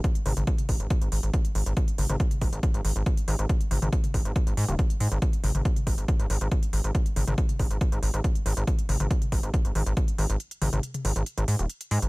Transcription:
0.04 kick, closed hi-hat
0.15 closed hi-hat
0.26 G#1, open hi-hat, mid tom
0.37 G#1, closed hi-hat, mid tom
0.47 kick, closed hi-hat
0.58 closed hi-hat, mid tom
0.69 G#1, kick, open hi-hat
0.80 G#1, closed hi-hat
0.90 kick, closed hi-hat
1.02 G#1, closed hi-hat
1.12 G#1, open hi-hat
1.23 G#1, closed hi-hat
1.34 kick, closed hi-hat
1.45 closed hi-hat
1.55 G#1, open hi-hat
1.66 G#1, closed hi-hat
1.77 kick, closed hi-hat
1.88 closed hi-hat
1.98 G#1, open hi-hat, mid tom
2.09 G#1, closed hi-hat, mid tom
2.20 kick, closed hi-hat
2.31 closed hi-hat, mid tom
2.41 G#1, kick, open hi-hat
2.53 G#1, closed hi-hat
2.63 kick, closed hi-hat
2.74 G#1, closed hi-hat
2.85 G#1, open hi-hat
2.96 G#1, closed hi-hat
3.06 kick, closed hi-hat
3.17 closed hi-hat
3.28 G#1, open hi-hat
3.39 G#1, closed hi-hat
3.49 kick, closed hi-hat
3.61 closed hi-hat
3.71 G#1, open hi-hat, mid tom
3.82 G#1, closed hi-hat, mid tom
3.93 kick, closed hi-hat
4.04 closed hi-hat, mid tom
4.14 G#1, kick, open hi-hat
4.25 G#1, closed hi-hat
4.36 kick, closed hi-hat
4.47 G#1, closed hi-hat
4.57 G#2, open hi-hat
4.68 D#1, closed hi-hat, mid tom
4.79 kick, closed hi-hat
4.90 closed hi-hat
5.00 G#2, open hi-hat
5.12 G#1, closed hi-hat
5.22 kick, closed hi-hat
5.33 closed hi-hat
5.44 G#1, open hi-hat, mid tom
5.55 G#1, closed hi-hat, mid tom
5.65 kick, closed hi-hat
5.76 closed hi-hat, mid tom
5.87 G#1, kick, open hi-hat
5.98 G#1, closed hi-hat
6.08 kick, closed hi-hat
6.20 G#1, closed hi-hat
6.30 G#1, open hi-hat
6.41 G#1, closed hi-hat
6.52 kick, closed hi-hat
6.63 closed hi-hat
6.73 G#1, open hi-hat
6.84 G#1, closed hi-hat
6.95 kick, closed hi-hat
7.06 closed hi-hat
7.16 G#1, open hi-hat, mid tom
7.27 G#1, closed hi-hat, mid tom
7.38 kick, closed hi-hat
7.49 closed hi-hat, mid tom
7.59 G#1, kick, open hi-hat
7.71 G#1, closed hi-hat
7.81 kick, closed hi-hat
7.92 G#1, closed hi-hat
8.03 G#1, open hi-hat
8.14 G#1, closed hi-hat
8.24 kick, closed hi-hat
8.35 closed hi-hat
8.46 G#1, open hi-hat
8.57 G#1, closed hi-hat
8.67 kick, closed hi-hat
8.79 closed hi-hat
8.89 G#1, open hi-hat, mid tom
9.00 G#1, closed hi-hat, mid tom
9.11 kick, closed hi-hat
9.22 closed hi-hat, mid tom
9.32 G#1, kick, open hi-hat
9.43 G#1, closed hi-hat
9.54 kick, closed hi-hat
9.65 G#1, closed hi-hat
9.75 G#1, open hi-hat
9.86 G#1, closed hi-hat
9.97 kick, closed hi-hat
10.08 closed hi-hat
10.18 G#1, open hi-hat
10.30 G#1, closed hi-hat
10.40 closed hi-hat
10.51 closed hi-hat
10.62 G#1, open hi-hat, mid tom
10.73 G#1, closed hi-hat, mid tom
10.83 closed hi-hat
10.94 closed hi-hat, mid tom
11.05 G#1, open hi-hat
11.16 G#1, closed hi-hat
11.26 closed hi-hat
11.38 G#1, closed hi-hat
11.48 G#2, open hi-hat
11.59 D#1, closed hi-hat
11.70 closed hi-hat
11.81 closed hi-hat
11.91 G#2, open hi-hat
12.02 G#1, closed hi-hat

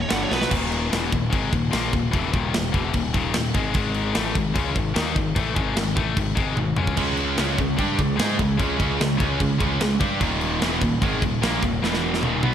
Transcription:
0.01 C#5
0.08 G1 G2 D3 G3 F#5, snare, crash
0.23 C#5
0.29 B1 B2 F#3 B3, snare
0.33 B4
0.42 snare
0.50 D#1 D#2 A#2 D#3, kick, crash
0.72 crash
0.89 E1 E2 B2 E3, snare, crash
1.10 D#1 D#2 A#2, kick, crash
1.30 G#1 G#2 D#3 G#3, kick, crash
1.51 D#1 D#2 A#2, kick, crash
1.71 A#1 A#2 F3 A#3, snare, crash
1.92 D#1 D#2 A#2, kick, crash
2.11 E1 E2 B2 E3, kick, crash
2.33 D#1 D#2 A#2 D#3, kick, crash
2.53 D#1 D#2 A#2, snare, crash
2.72 E1 E2 B2 E3, kick, crash
2.93 D#1 D#2 A#2, kick, crash
3.14 D#1 D#2 A#2 D#3, kick, crash
3.34 D#1 D#2 A#2, snare, crash
3.54 G#1 G#2 D#3 G#3, kick, crash
3.74 G#1 G#2 D#3 G#3, kick, crash
3.94 crash
4.14 A1 A2 E3 A3, snare, crash
4.35 G#1 G#2 D#3, kick, crash
4.54 C#2 C#3 G#3 C#4, kick, crash
4.74 G#1 G#2 D#3, kick, crash
4.94 D#2 D#3 A#3 D#4, snare, crash
5.15 G#1 G#2 D#3, kick, crash
5.35 A1 A2 E3 A3, kick, crash
5.55 G#1 G#2 D#3 G#3, kick, crash
5.75 G#1 G#2 D#3, snare, crash
5.96 A1 A2 E3 A3, kick, crash
6.14 G#1 G#2 D#3, kick, crash
6.35 G#1 G#2 D#3 G#3, kick, crash
6.56 G#1 G#2 D#3, high tom
6.76 C#2 C#3 G#3 C#4, mid tom
6.87 kick
6.96 C#2 C#3 G#3 C#4, kick, crash
7.17 crash
7.37 C#2 C#3 G#3 C#4, snare, crash
7.57 C#2 C#3 G#3, kick, crash
7.77 G2 G3 D4 G4, kick, crash
7.98 C#2 C#3 G#3, kick, crash
8.16 G#2 G#3 D#4 G#4, snare, crash
8.21 G#4
8.37 C#2 C#3 G#3, kick, crash
8.57 C#2 C#3 G#3 C#4, kick, crash
8.62 C#3
8.77 C#2 C#3 G#3 C#4, kick, crash
8.98 C#2 C#3 G#3, snare, crash
9.02 G#3
9.17 C#2 C#3 G#3 C#4, kick, crash
9.38 C#2 C#3 G#3, kick, crash
9.58 C#2 C#3 G#3 C#4, kick, crash
9.80 C#2 C#3 G#3, snare, crash
10.00 G2 G3 D4 G4, kick, crash
10.20 D#1 D#2 A#2 D#3, kick, crash
10.41 crash
10.61 E1 E2 B2 E3, snare, crash
10.82 D#1 D#2 A#2, kick, crash
11.02 G#1 G#2 D#3 G#3, kick, crash
11.22 D#1 D#2 A#2, kick, crash
11.42 A#1 A#2 F3 A#3, snare, crash
11.62 D#1 D#2 A#2, kick, crash
11.82 E1 E2 B2 E3, snare
11.94 snare
12.14 snare
12.22 D#1 D#2 A#2 D#3, high tom
12.43 B1 B2 F#3 B3, high tom

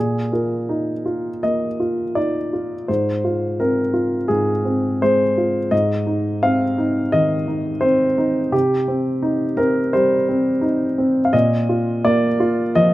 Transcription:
Already playing: A#2 G#4
0.32 F4 A#4
0.69 D#4
1.06 F4
1.43 A#3 D#5
1.80 F4
2.15 D#4 D5
2.53 F4
2.88 G#2 C5
3.24 F4
3.60 C4 A#4
3.94 F4
4.28 G#2 G#4
4.65 C4
5.02 G#3 C5
5.38 F4
5.71 G#2 D#5
6.07 D#4
6.43 C4 F5
6.78 D#4
7.12 D#3 D#5
7.48 D#4
7.81 C4 C5
8.18 D#4
8.52 C3 G4
8.88 C4
9.22 D#4
9.57 C4 A#4
9.93 G3 C5
10.29 C4
10.61 D#4
10.98 C4
11.25 F5
11.33 A#2 D#5
11.69 F4
12.05 A#3 D5
12.40 F4
12.75 F3 D#5

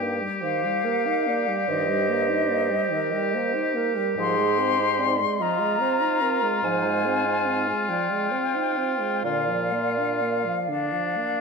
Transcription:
Already playing: G2 G4 A#4 G5
0.00 A#3
0.21 G3
0.42 D#3 C5 F5
0.64 G3
0.84 A#3 A#4
1.06 D#4
1.28 A#3 D5
1.48 G3
1.68 G2 D#3 C5 D#5
1.89 G3
2.10 A#3
2.29 D#4
2.49 A#3
2.70 G3
2.91 D#3 A#4
3.13 G3
3.34 A#3 C5
3.55 D#4
3.75 A#3 A#4
3.97 G3
4.17 G#2 F3 G#4 C6
4.38 G#3
4.59 C4 C5
4.79 D#4
4.99 C4 D5
5.20 G#3
5.40 F3 F4 D#5 A#5
5.61 G#3
5.81 C4 C5
6.00 D#4
6.21 C4 A#4
6.42 G#3
6.63 G#2 F3 C5 G#5
6.86 G#3
7.06 C4
7.25 D#4
7.46 C4
7.68 G#3
7.88 F3 D5 G5
8.12 G#3
8.32 C4 C5
8.55 D#4
8.77 C4 C5
9.00 G#3
9.24 A#2 D3 F4 D5 F5
9.48 F3
9.73 A#3
9.98 D4
10.21 A#3
10.46 F3
10.69 D3 D4
10.92 F3
11.18 A#3

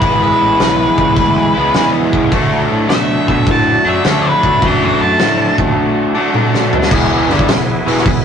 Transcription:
Already playing: E4 B4
0.01 G#1 E3 G#3 B3 E4 G#4, kick, open hi-hat
0.22 E4 B4
0.41 A1
0.59 B1, snare, open hi-hat
0.98 C#2, kick
1.17 D2, kick, open hi-hat
1.54 C#2 G#3 B3 E4
1.58 E3
1.73 E2 E3 G#3 B3 E4, snare, open hi-hat
2.13 C#2, kick
2.30 D2 D3 F#3 A3 D4 F#4, kick, open hi-hat
2.71 A2
2.89 B2 A4 E5, snare, open hi-hat
3.28 B2 G#4 E5, kick
3.46 A2 D5, kick, open hi-hat
3.51 A5
3.85 F#2 D3 F#3 A3 D4 G#4
3.89 E5
4.03 D2 D3 F#3 A3 D4, snare, open hi-hat
4.25 D4 B4
4.43 D2, kick
4.61 F#2 D3 F#3 A3 D4 F#4 A4, kick, open hi-hat
4.66 B4 E5
4.84 G#4 B4 E5
5.00 F#2 D5 A5
5.19 A2, snare, open hi-hat
5.58 D#2, kick
6.14 D3 F#3 A3 D4
6.32 D3 F#3 A3 D4, high tom
6.54 snare
6.73 mid tom
6.82 snare
6.88 E1 E2 B2 E3 B3 E4 G#4, kick, crash
7.30 G1 G2 D3 G3, open hi-hat
7.39 kick
7.48 E1 E2 B2, snare, open hi-hat
7.86 E1 E2 B2 E3, open hi-hat
7.97 snare
8.05 E1 E2 B2, kick, open hi-hat

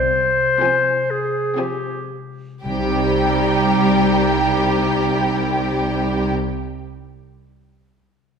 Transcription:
Already playing: C2 C3 G#3 F4 C5
0.62 F3 C4 G#5
1.11 G#4
1.57 F3 C4 G4 G#5
2.64 C2 C3 G3 D#4 G4 G5
2.71 G3
2.78 C4
2.86 G4
2.92 C5

